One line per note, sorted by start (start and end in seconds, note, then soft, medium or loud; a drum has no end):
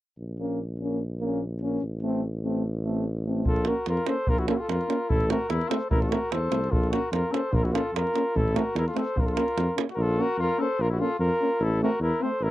0.18 1.79 A#1 medium
0.39 0.60 A#3 medium
0.39 0.60 C#4 soft
0.79 1.01 A#3 soft
0.79 1.00 C#4 soft
1.20 1.41 A#3 medium
1.20 1.42 C#4 soft
1.62 1.83 A#3 soft
1.62 1.82 C#4 soft
1.82 3.43 A1 medium
2.02 2.23 A3 medium
2.02 2.23 C4 medium
2.43 2.65 A3 soft
2.43 2.64 C4 soft
2.85 3.05 A3 soft
2.85 3.06 C4 soft
3.25 3.46 A3 soft
3.25 3.46 C4 soft
3.46 3.69 A#1 medium
3.46 3.69 F4 medium
3.46 3.70 A4 medium
3.46 davul low medium
3.56 davul high soft
3.65 3.74 A#3 medium
3.65 3.75 C#4 soft
3.65 3.88 F#4 medium
3.65 3.88 A#4 medium
3.65 davul high medium
3.86 3.98 F2 medium
3.86 4.10 F4 medium
3.86 4.10 A#4 medium
3.86 davul high medium
3.97 davul high soft
4.06 4.15 A#3 soft
4.06 4.15 C#4 medium
4.06 4.29 A4 medium
4.06 4.31 C5 medium
4.06 davul high medium
4.27 4.51 A#1 medium
4.27 4.40 F4 medium
4.27 4.41 A#4 loud
4.27 davul low medium
4.38 4.48 E4 soft
4.38 4.48 F#4 medium
4.38 davul high soft
4.47 4.57 A#3 medium
4.47 4.55 C#4 medium
4.47 4.54 F4 medium
4.47 4.56 A4 medium
4.47 davul high medium
4.53 4.59 E4 medium
4.53 4.63 F#4 medium
4.57 4.69 F4 medium
4.61 4.72 A4 medium
4.69 4.80 F2 medium
4.69 5.11 F4 medium
4.69 5.11 A#4 medium
4.69 davul high medium
4.81 davul high soft
4.88 4.97 A#3 medium
4.88 4.97 C#4 medium
4.88 davul high medium
5.09 5.32 A1 medium
5.09 5.28 E4 medium
5.09 5.29 A4 loud
5.09 davul low medium
5.20 davul high soft
5.28 5.38 A3 medium
5.28 5.38 C4 medium
5.28 5.48 F#4 medium
5.28 5.49 A#4 medium
5.28 davul high medium
5.49 5.61 E2 medium
5.49 5.71 E4 medium
5.49 5.73 A#4 medium
5.49 davul high medium
5.61 davul high soft
5.69 5.79 A3 soft
5.69 5.78 C4 medium
5.69 5.90 A4 medium
5.69 5.90 C5 medium
5.69 davul high medium
5.90 6.13 A1 medium
5.90 6.02 E4 medium
5.90 6.03 A#4 loud
5.90 davul low loud
6.00 6.10 F4 medium
6.00 6.13 A4 medium
6.00 davul high soft
6.08 6.19 A3 medium
6.08 6.19 C4 soft
6.08 6.33 F#4 medium
6.08 6.34 A#4 medium
6.08 davul high medium
6.31 6.50 E2 medium
6.31 6.72 A4 medium
6.31 6.73 C5 medium
6.31 davul high medium
6.50 6.70 C2 medium
6.50 6.59 A3 soft
6.50 6.59 C4 soft
6.50 davul high medium
6.64 davul high soft
6.71 6.94 A#1 medium
6.71 6.89 F4 medium
6.71 6.92 A4 medium
6.71 davul low medium
6.83 davul high soft
6.90 7.00 A#3 medium
6.90 7.00 C#4 soft
6.90 7.10 F#4 medium
6.90 7.12 A#4 medium
6.90 davul high medium
7.11 7.23 F2 medium
7.11 7.33 F4 medium
7.11 7.35 A#4 medium
7.11 davul high medium
7.31 7.40 A#3 medium
7.31 7.41 C#4 medium
7.31 7.53 A4 medium
7.31 7.56 C5 medium
7.31 davul high medium
7.52 7.75 A#1 medium
7.52 7.64 F4 medium
7.52 7.66 A#4 medium
7.52 davul low medium
7.63 7.73 E4 soft
7.63 7.76 F#4 medium
7.63 davul high soft
7.72 7.81 A#3 medium
7.72 7.82 C#4 medium
7.72 7.92 F4 medium
7.72 7.95 A4 medium
7.72 davul high medium
7.93 8.05 F2 medium
7.93 8.37 F4 medium
7.93 8.38 A#4 medium
7.93 davul high medium
8.07 davul high soft
8.14 8.22 A#3 medium
8.14 8.23 C#4 medium
8.14 davul high medium
8.35 8.57 A1 medium
8.35 8.57 E4 medium
8.35 8.58 A4 medium
8.35 davul low medium
8.48 davul high soft
8.54 8.63 A3 medium
8.54 8.62 C4 medium
8.54 8.76 F#4 medium
8.54 8.76 A#4 medium
8.54 davul high medium
8.75 8.86 E2 medium
8.75 8.86 E4 medium
8.75 8.86 A#4 medium
8.75 davul high medium
8.87 8.99 F4 medium
8.87 8.99 A4 medium
8.87 davul high soft
8.94 9.03 A3 medium
8.94 9.03 C4 medium
8.94 9.19 A4 medium
8.94 9.22 C5 medium
8.94 davul high medium
9.16 9.38 A#1 medium
9.16 9.24 F4 medium
9.16 davul low medium
9.20 9.30 F4 medium
9.20 9.27 A#4 medium
9.26 9.36 A4 medium
9.26 davul high soft
9.30 9.77 F4 medium
9.35 9.45 A#3 medium
9.35 9.44 C#4 soft
9.35 9.79 A#4 medium
9.35 davul high medium
9.48 davul high soft
9.57 9.68 F2 medium
9.57 davul high medium
9.76 9.85 A#3 soft
9.76 9.84 C#4 soft
9.76 davul high medium
9.89 9.99 F#4 medium
9.89 davul high soft
9.94 10.19 A#1 loud
9.94 10.20 F4 medium
9.94 10.04 A#4 medium
10.02 10.23 A4 medium
10.18 10.26 A#3 medium
10.18 10.26 C#4 soft
10.18 10.38 F#4 medium
10.18 10.40 A#4 medium
10.37 10.49 F2 medium
10.37 10.60 F4 medium
10.42 10.63 A#4 medium
10.59 10.67 A#3 soft
10.59 10.67 C#4 medium
10.59 10.82 A4 medium
10.59 10.83 C5 medium
10.79 11.01 A#1 medium
10.79 10.89 F4 medium
10.79 10.91 A#4 medium
10.89 11.01 E4 medium
10.89 11.03 F#4 medium
11.00 11.08 A#3 medium
11.00 11.08 C#4 medium
11.00 11.18 F4 medium
11.00 11.19 A4 medium
11.19 11.31 F2 medium
11.19 11.62 F4 medium
11.19 11.65 A#4 loud
11.41 11.49 A#3 soft
11.41 11.49 C#4 medium
11.60 11.82 A1 loud
11.60 11.80 E4 medium
11.60 11.82 A4 medium
11.82 11.90 A3 medium
11.82 11.90 C4 medium
11.82 12.00 F#4 medium
11.82 12.01 A#4 medium
12.00 12.11 E2 medium
12.00 12.24 E4 medium
12.00 12.24 A#4 medium
12.21 12.31 A3 soft
12.21 12.29 C4 medium
12.21 12.44 A4 medium
12.21 12.44 C5 medium
12.41 12.51 A1 medium
12.41 12.51 E4 medium
12.41 12.51 A#4 medium